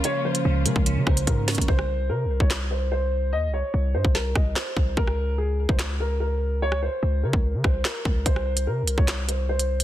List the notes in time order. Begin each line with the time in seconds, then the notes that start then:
Already playing: C#3 F3 G#3 A#3 C#4 F4
0.04 C#3 C#5, closed hi-hat
0.24 F3 C5
0.35 closed hi-hat
0.45 C#2 C#3
0.65 C#3 G#3 A#4, closed hi-hat
0.76 C#2, kick
0.86 C#3, closed hi-hat
0.96 C#3
1.07 C2 A#3 C5, kick, cross-stick
1.17 closed hi-hat
1.27 G#2 A#4, kick, closed hi-hat
1.48 C#4, snare, closed hi-hat, open hi-hat
1.55 C#2, kick, closed hi-hat
1.61 closed hi-hat
1.68 C2 C5, kick
1.79 cross-stick
2.09 C3 A#4
2.25 C2
2.40 C2 C#5, kick
2.50 snare, clap
2.71 C5
2.92 C5
3.33 D#2 D#5
3.48 C2
3.54 C#5
3.74 C2
3.94 G2 C5
4.05 C2, kick
4.15 A#4, snare
4.35 C2 D#5, kick, cross-stick
4.56 C5, snare, clap
4.77 C2, kick
4.97 C#2 A#4, kick
5.07 cross-stick
5.38 G#4
5.69 C#2 C5, kick
5.79 snare, clap
6.00 A#4
6.20 A#4
6.62 C#5
6.72 cross-stick
6.83 C5
7.03 C#2
7.23 C#3 A#4
7.33 C#2, kick
7.54 C#3
7.64 C2 C5, kick, cross-stick
7.85 A#4, snare, clap
8.05 C#2, kick
8.26 C2 C5, kick, closed hi-hat
8.36 cross-stick
8.57 closed hi-hat
8.67 C3 A#4
8.82 C2
8.88 closed hi-hat
8.98 C2 C#5, kick
9.08 snare, clap, closed hi-hat
9.28 C5, closed hi-hat
9.49 C5
9.59 closed hi-hat
9.80 closed hi-hat